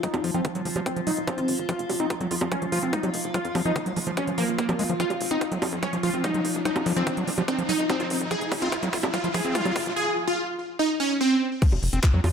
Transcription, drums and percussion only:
0.03 kick, closed hi-hat
0.14 closed hi-hat, high bongo
0.24 open hi-hat
0.34 closed hi-hat
0.45 kick, closed hi-hat
0.55 closed hi-hat
0.65 open hi-hat
0.76 closed hi-hat, high bongo
0.86 kick, closed hi-hat
0.96 closed hi-hat
1.07 open hi-hat
1.17 closed hi-hat
1.27 kick, closed hi-hat, high bongo
1.38 closed hi-hat
1.48 open hi-hat
1.58 closed hi-hat
1.69 kick, closed hi-hat
1.79 closed hi-hat
1.90 open hi-hat, high bongo
2.00 closed hi-hat
2.10 kick, closed hi-hat
2.21 closed hi-hat
2.31 open hi-hat
2.41 closed hi-hat, high bongo
2.52 kick, closed hi-hat
2.62 closed hi-hat
2.72 open hi-hat
2.83 closed hi-hat
2.93 kick, closed hi-hat
3.03 closed hi-hat, high bongo
3.14 open hi-hat
3.24 closed hi-hat
3.34 kick, closed hi-hat
3.45 closed hi-hat
3.55 open hi-hat, high bongo
3.65 closed hi-hat
3.76 kick, closed hi-hat
3.86 closed hi-hat
3.96 open hi-hat
4.07 closed hi-hat
4.17 kick, closed hi-hat, high bongo
4.27 closed hi-hat
4.38 open hi-hat
4.48 closed hi-hat
4.58 kick, closed hi-hat
4.69 closed hi-hat, high bongo
4.79 open hi-hat
4.90 closed hi-hat
5.00 kick, closed hi-hat
5.10 closed hi-hat, high bongo
5.21 open hi-hat
5.31 closed hi-hat
5.41 kick, closed hi-hat
5.52 closed hi-hat
5.62 open hi-hat, high bongo
5.72 closed hi-hat
5.83 kick, closed hi-hat
5.93 closed hi-hat
6.03 open hi-hat
6.14 closed hi-hat
6.24 kick, closed hi-hat, high bongo
6.34 closed hi-hat
6.45 open hi-hat
6.55 closed hi-hat
6.65 kick, closed hi-hat
6.76 closed hi-hat, high bongo
6.86 open hi-hat
6.96 closed hi-hat
7.07 kick, closed hi-hat
7.17 closed hi-hat
7.27 open hi-hat
7.38 closed hi-hat, high bongo
7.48 kick, closed hi-hat
7.59 closed hi-hat
7.69 open hi-hat
7.79 closed hi-hat
7.90 kick, closed hi-hat, high bongo
8.00 closed hi-hat
8.10 open hi-hat
8.21 closed hi-hat
8.31 kick, closed hi-hat
8.41 closed hi-hat
8.52 kick, open hi-hat, high bongo
8.62 closed hi-hat
8.72 kick, closed hi-hat
8.83 closed hi-hat
8.93 kick, open hi-hat
9.03 high bongo
9.14 kick, closed hi-hat
9.24 closed hi-hat
9.34 kick, open hi-hat
9.45 closed hi-hat
9.55 kick, closed hi-hat
9.65 closed hi-hat, high bongo
9.76 kick, open hi-hat
9.86 closed hi-hat
11.62 kick, closed hi-hat, crash
11.72 high bongo
11.83 open hi-hat
11.93 closed hi-hat
12.03 kick, clap, closed hi-hat
12.24 open hi-hat, high bongo

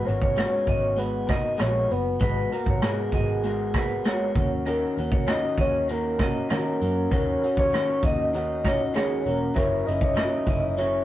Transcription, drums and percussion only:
0.08 closed hi-hat
0.22 kick
0.38 cross-stick, closed hi-hat
0.67 kick, closed hi-hat
0.99 closed hi-hat
1.29 kick, cross-stick, closed hi-hat
1.59 cross-stick, closed hi-hat
1.91 closed hi-hat
2.20 kick, closed hi-hat
2.52 closed hi-hat
2.66 kick
2.82 cross-stick, closed hi-hat
3.12 kick, closed hi-hat
3.44 closed hi-hat
3.74 kick, cross-stick, closed hi-hat
4.05 cross-stick, closed hi-hat
4.35 kick, closed hi-hat
4.66 closed hi-hat
4.98 closed hi-hat
5.12 kick
5.28 cross-stick, closed hi-hat
5.58 kick, closed hi-hat
5.89 closed hi-hat
6.19 kick, cross-stick, closed hi-hat
6.50 cross-stick, closed hi-hat
6.81 closed hi-hat
7.12 kick, closed hi-hat
7.44 closed hi-hat
7.57 kick
7.74 cross-stick, closed hi-hat
8.03 kick, closed hi-hat
8.34 closed hi-hat
8.64 kick, cross-stick, closed hi-hat
8.96 cross-stick, closed hi-hat
9.26 closed hi-hat
9.56 kick, closed hi-hat
9.88 closed hi-hat
10.01 kick
10.17 cross-stick, closed hi-hat
10.46 kick, closed hi-hat
10.78 closed hi-hat

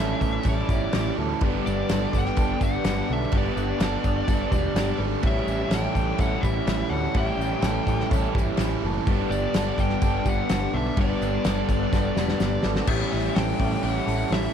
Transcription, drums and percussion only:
0.21 kick, tambourine
0.43 kick, tambourine, crash
0.69 kick, tambourine
0.93 snare, tambourine, crash
1.41 kick, crash
1.67 tambourine
1.89 snare, tambourine, crash
2.13 kick, tambourine
2.25 snare
2.37 kick, tambourine, crash
2.61 kick, tambourine
2.84 snare, tambourine, crash
3.32 kick, tambourine, crash
3.57 tambourine
3.80 snare, tambourine, crash
4.04 kick, tambourine
4.28 kick, tambourine, crash
4.52 kick, tambourine
4.76 snare, tambourine, crash
5.23 kick, crash
5.48 tambourine
5.71 snare, tambourine, crash
5.95 kick, tambourine
6.18 kick, tambourine, crash
6.43 kick, tambourine
6.67 snare, tambourine, crash
7.14 kick, crash
7.41 tambourine
7.62 snare, tambourine, crash
7.87 kick, tambourine
8.00 snare
8.11 kick, tambourine, crash
8.35 kick, tambourine
8.57 snare, tambourine, crash
9.07 kick, crash
9.32 tambourine
9.54 snare, tambourine, crash
9.78 kick, tambourine
9.89 snare
10.02 kick, tambourine, crash
10.26 kick, tambourine
10.49 snare, tambourine, crash
10.97 kick, tambourine, crash
11.22 tambourine
11.44 snare, tambourine, crash
11.69 kick, tambourine
11.93 kick, snare, tambourine
12.17 snare, tambourine
12.28 snare
12.40 snare, tambourine
12.63 snare, tambourine
12.75 snare
12.87 kick, crash
13.11 open hi-hat
13.36 snare, open hi-hat
13.60 kick, open hi-hat
13.83 open hi-hat
14.08 open hi-hat
14.32 snare, open hi-hat

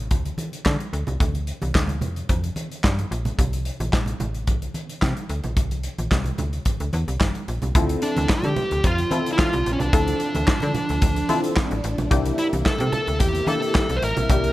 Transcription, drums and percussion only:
0.11 kick, closed hi-hat, high conga
0.25 closed hi-hat, muted conga
0.38 closed hi-hat, high conga
0.53 closed hi-hat
0.65 kick, snare, clap, high conga
0.80 closed hi-hat
0.93 closed hi-hat
1.07 closed hi-hat, low conga
1.20 kick, closed hi-hat, muted conga
1.35 closed hi-hat
1.47 closed hi-hat
1.62 closed hi-hat, high conga
1.75 kick, snare, clap
1.87 closed hi-hat, muted conga, low conga
2.01 closed hi-hat, low conga
2.16 closed hi-hat
2.29 kick, closed hi-hat, high conga
2.44 closed hi-hat, muted conga
2.56 closed hi-hat, high conga
2.72 closed hi-hat
2.84 kick, snare, clap, high conga
2.98 closed hi-hat, muted conga
3.12 closed hi-hat
3.25 closed hi-hat, low conga
3.39 kick, closed hi-hat
3.53 closed hi-hat, muted conga
3.65 closed hi-hat
3.80 closed hi-hat, high conga
3.93 kick, snare, clap
4.06 closed hi-hat, low conga
4.20 closed hi-hat, low conga
4.35 closed hi-hat
4.47 kick, closed hi-hat, muted conga, high conga
4.62 closed hi-hat, muted conga
4.74 closed hi-hat, high conga
4.89 closed hi-hat
5.02 kick, snare, clap, muted conga, high conga
5.17 closed hi-hat, muted conga
5.29 closed hi-hat
5.44 closed hi-hat, low conga
5.57 kick, closed hi-hat, muted conga
5.71 closed hi-hat, muted conga
5.83 closed hi-hat
5.98 closed hi-hat, high conga
6.11 kick, snare, clap
6.24 closed hi-hat, muted conga, low conga
6.38 closed hi-hat, low conga
6.53 closed hi-hat
6.65 kick, closed hi-hat, muted conga, high conga
6.80 closed hi-hat, muted conga
6.93 closed hi-hat, high conga
7.08 closed hi-hat
7.20 kick, snare, clap, muted conga, high conga
7.35 closed hi-hat, muted conga
7.48 closed hi-hat
7.62 closed hi-hat, low conga
7.75 kick, closed hi-hat, muted conga
7.89 closed hi-hat, muted conga
8.02 closed hi-hat
8.16 closed hi-hat, high conga
8.29 kick, snare, clap
8.42 closed hi-hat, low conga
8.56 closed hi-hat, low conga
8.71 closed hi-hat
8.84 kick, closed hi-hat
8.98 closed hi-hat, muted conga
9.11 closed hi-hat, high conga
9.26 closed hi-hat
9.38 kick, snare, clap, muted conga, high conga
9.53 closed hi-hat, muted conga
9.66 closed hi-hat
9.80 closed hi-hat, low conga
9.93 kick, closed hi-hat
10.08 closed hi-hat, muted conga
10.20 closed hi-hat
10.35 closed hi-hat, high conga
10.48 kick, snare, clap
10.60 closed hi-hat, muted conga, low conga
10.74 closed hi-hat, low conga
10.89 closed hi-hat
11.02 kick, closed hi-hat, muted conga
11.16 closed hi-hat, muted conga
11.29 closed hi-hat, high conga
11.44 closed hi-hat
11.57 kick, snare, clap, muted conga, high conga
11.71 closed hi-hat, muted conga
11.84 closed hi-hat
11.98 closed hi-hat, low conga
12.11 kick, closed hi-hat, muted conga
12.26 closed hi-hat, muted conga
12.38 closed hi-hat
12.53 closed hi-hat, high conga
12.66 kick, snare, clap
12.78 closed hi-hat, muted conga, low conga
12.92 closed hi-hat, low conga
13.07 closed hi-hat
13.20 kick, closed hi-hat, muted conga
13.35 closed hi-hat
13.47 closed hi-hat, high conga
13.62 closed hi-hat
13.75 kick, snare, clap, high conga
13.90 closed hi-hat, muted conga
14.03 closed hi-hat
14.17 closed hi-hat, low conga
14.30 kick, closed hi-hat
14.44 closed hi-hat

